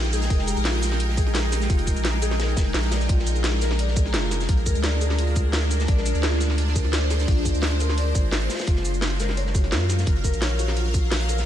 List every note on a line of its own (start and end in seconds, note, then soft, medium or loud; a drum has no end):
0.00 0.29 A#1 medium
0.00 8.46 G#3 medium
0.00 2.88 D#4 medium
0.00 0.65 F4 loud
0.00 0.48 G4 medium
0.00 0.13 G#4 loud
0.00 0.30 A#4 medium
0.00 2.88 A#4 medium
0.00 2.88 G5 medium
0.04 snare soft
0.04 closed hi-hat soft
0.12 0.29 G#4 loud
0.12 closed hi-hat medium
0.12 shaker medium
0.22 snare medium
0.22 closed hi-hat soft
0.22 shaker soft
0.30 0.55 F1 loud
0.30 0.46 A#4 medium
0.30 kick loud
0.30 closed hi-hat loud
0.30 closed hi-hat medium
0.38 snare soft
0.47 0.64 G4 medium
0.47 closed hi-hat medium
0.47 shaker medium
0.57 1.68 A#1 medium
0.57 closed hi-hat soft
0.57 shaker soft
0.65 0.81 F4 loud
0.65 snare loud
0.65 closed hi-hat medium
0.65 open hi-hat medium
0.74 snare soft
0.82 snare medium
0.82 closed hi-hat medium
0.82 shaker medium
0.92 snare medium
1.00 closed hi-hat medium
1.00 closed hi-hat loud
1.09 snare soft
1.17 1.34 G#4 loud
1.17 kick loud
1.17 closed hi-hat medium
1.17 shaker medium
1.27 snare soft
1.27 closed hi-hat soft
1.34 1.51 A#4 medium
1.34 snare loud
1.34 closed hi-hat loud
1.52 1.68 G4 medium
1.52 snare medium
1.52 closed hi-hat medium
1.52 shaker medium
1.62 snare soft
1.62 closed hi-hat soft
1.62 shaker soft
1.70 1.95 F1 loud
1.70 1.86 F4 loud
1.70 kick loud
1.70 closed hi-hat loud
1.70 closed hi-hat medium
1.79 closed hi-hat soft
1.87 kick medium
1.87 closed hi-hat medium
1.87 shaker medium
1.96 2.56 A#1 medium
1.96 closed hi-hat soft
1.96 shaker soft
2.05 snare loud
2.05 closed hi-hat medium
2.14 snare soft
2.22 2.39 G#4 loud
2.22 closed hi-hat medium
2.22 shaker medium
2.31 snare soft
2.31 snare medium
2.31 closed hi-hat soft
2.40 2.55 A#4 medium
2.40 snare loud
2.40 closed hi-hat loud
2.40 open hi-hat medium
2.49 closed hi-hat soft
2.57 2.73 F1 medium
2.57 kick loud
2.57 snare loud
2.57 closed hi-hat medium
2.57 open hi-hat medium
2.57 shaker medium
2.74 3.08 A#1 loud
2.74 snare loud
2.74 closed hi-hat loud
2.74 closed hi-hat medium
2.84 snare soft
2.84 closed hi-hat soft
2.91 8.46 D4 medium
2.91 5.68 A#4 medium
2.91 3.08 D5 medium
2.91 snare loud
2.91 closed hi-hat medium
2.91 open hi-hat medium
2.91 shaker medium
3.01 snare soft
3.01 closed hi-hat soft
3.01 shaker soft
3.09 4.15 A#1 loud
3.09 3.25 F4 loud
3.09 kick loud
3.09 closed hi-hat loud
3.09 closed hi-hat medium
3.19 snare soft
3.27 closed hi-hat medium
3.27 shaker medium
3.36 closed hi-hat soft
3.36 shaker soft
3.44 snare loud
3.44 closed hi-hat medium
3.44 open hi-hat medium
3.53 snare soft
3.62 3.78 A#4 loud
3.62 snare medium
3.62 closed hi-hat medium
3.62 shaker medium
3.71 snare medium
3.79 3.95 D5 medium
3.79 closed hi-hat loud
3.79 closed hi-hat medium
3.88 snare medium
3.96 4.12 G#4 medium
3.96 kick loud
3.96 closed hi-hat medium
3.96 shaker medium
4.06 snare soft
4.06 closed hi-hat soft
4.14 4.47 F1 medium
4.14 4.30 F4 loud
4.14 snare loud
4.14 closed hi-hat loud
4.14 closed hi-hat medium
4.31 snare medium
4.31 closed hi-hat medium
4.31 shaker medium
4.41 snare soft
4.41 closed hi-hat soft
4.41 shaker soft
4.49 4.74 A#1 loud
4.49 kick loud
4.49 closed hi-hat medium
4.57 closed hi-hat soft
4.66 4.83 A#4 loud
4.66 kick medium
4.66 closed hi-hat medium
4.66 shaker medium
4.75 5.87 D2 medium
4.75 closed hi-hat soft
4.75 shaker soft
4.83 5.00 D5 medium
4.83 snare loud
4.83 closed hi-hat medium
4.93 snare soft
5.01 5.17 G#4 medium
5.01 closed hi-hat medium
5.01 shaker medium
5.10 snare soft
5.10 snare medium
5.10 closed hi-hat soft
5.18 5.34 F4 loud
5.18 closed hi-hat medium
5.18 closed hi-hat loud
5.27 closed hi-hat soft
5.35 kick loud
5.35 closed hi-hat medium
5.35 shaker medium
5.53 snare loud
5.53 closed hi-hat loud
5.63 snare soft
5.63 closed hi-hat soft
5.71 5.88 A#4 loud
5.71 8.47 C5 medium
5.71 closed hi-hat medium
5.71 shaker medium
5.80 snare medium
5.80 closed hi-hat soft
5.80 shaker soft
5.87 closed hi-hat medium
5.88 6.13 A#1 loud
5.88 6.04 D5 medium
5.88 kick loud
5.88 closed hi-hat medium
5.97 snare soft
6.06 6.22 G#4 medium
6.06 closed hi-hat medium
6.06 shaker medium
6.15 7.27 D2 medium
6.15 closed hi-hat soft
6.15 shaker soft
6.23 6.39 F4 loud
6.23 snare loud
6.23 closed hi-hat medium
6.23 open hi-hat medium
6.32 snare soft
6.40 snare medium
6.40 closed hi-hat medium
6.40 shaker medium
6.50 snare soft
6.50 snare medium
6.58 closed hi-hat medium
6.67 snare soft
6.76 6.92 A#4 loud
6.76 kick loud
6.76 closed hi-hat medium
6.76 shaker medium
6.84 snare soft
6.84 closed hi-hat soft
6.93 7.09 D5 medium
6.93 snare loud
6.93 closed hi-hat medium
7.10 7.26 G#4 medium
7.10 snare medium
7.10 closed hi-hat medium
7.10 shaker medium
7.19 snare soft
7.19 closed hi-hat soft
7.19 shaker soft
7.28 7.53 A#1 loud
7.28 7.44 F4 loud
7.28 kick loud
7.28 closed hi-hat medium
7.37 closed hi-hat soft
7.45 kick medium
7.45 closed hi-hat medium
7.45 shaker medium
7.54 8.14 D2 medium
7.54 closed hi-hat soft
7.54 shaker soft
7.62 snare loud
7.62 closed hi-hat medium
7.72 snare soft
7.80 7.97 A#4 loud
7.80 closed hi-hat medium
7.80 shaker medium
7.89 snare soft
7.89 snare medium
7.89 closed hi-hat soft
7.98 8.13 D5 medium
7.98 closed hi-hat medium
8.07 closed hi-hat soft
8.15 8.49 G#1 medium
8.15 8.31 F4 medium
8.15 kick loud
8.15 closed hi-hat medium
8.15 shaker medium
8.32 snare loud
8.32 closed hi-hat medium
8.42 closed hi-hat soft
8.49 11.46 F#3 medium
8.49 8.60 F4 loud
8.49 11.46 A#4 medium
8.49 11.46 F5 medium
8.49 snare medium
8.49 closed hi-hat medium
8.49 open hi-hat medium
8.49 shaker medium
8.54 snare medium
8.54 open hi-hat medium
8.58 snare loud
8.58 closed hi-hat soft
8.58 open hi-hat medium
8.58 shaker soft
8.67 9.74 F#1 loud
8.67 8.83 F4 loud
8.67 kick loud
8.67 closed hi-hat medium
8.76 snare soft
8.85 closed hi-hat medium
8.85 shaker medium
8.94 closed hi-hat soft
8.94 shaker soft
9.01 snare loud
9.01 closed hi-hat medium
9.01 open hi-hat medium
9.11 snare soft
9.20 9.36 A#4 loud
9.20 snare medium
9.20 closed hi-hat medium
9.20 shaker medium
9.29 snare medium
9.37 9.53 C#5 medium
9.37 closed hi-hat medium
9.46 snare soft
9.55 9.70 F#4 medium
9.55 kick loud
9.55 closed hi-hat medium
9.55 shaker medium
9.64 snare soft
9.64 closed hi-hat soft
9.72 10.06 F#2 medium
9.72 9.88 F4 loud
9.72 snare loud
9.72 closed hi-hat medium
9.89 snare medium
9.89 closed hi-hat medium
9.89 shaker medium
9.99 snare medium
9.99 closed hi-hat soft
9.99 shaker soft
10.06 10.32 F#1 loud
10.06 kick loud
10.06 closed hi-hat medium
10.16 closed hi-hat soft
10.24 10.41 A#4 loud
10.24 kick medium
10.24 closed hi-hat medium
10.24 shaker medium
10.34 11.45 A#1 medium
10.34 closed hi-hat soft
10.34 shaker soft
10.42 10.58 C#5 medium
10.42 snare loud
10.42 closed hi-hat medium
10.51 snare soft
10.59 10.75 F#4 medium
10.59 closed hi-hat medium
10.59 shaker medium
10.68 snare soft
10.68 snare medium
10.68 closed hi-hat soft
10.76 10.93 F4 loud
10.76 closed hi-hat medium
10.86 closed hi-hat soft
10.94 kick loud
10.94 closed hi-hat medium
10.94 shaker medium
11.12 snare loud
11.12 closed hi-hat loud
11.12 closed hi-hat medium
11.20 snare soft
11.20 closed hi-hat soft
11.29 11.46 A#4 loud
11.29 closed hi-hat medium
11.29 shaker medium
11.38 snare medium
11.38 closed hi-hat soft
11.38 shaker soft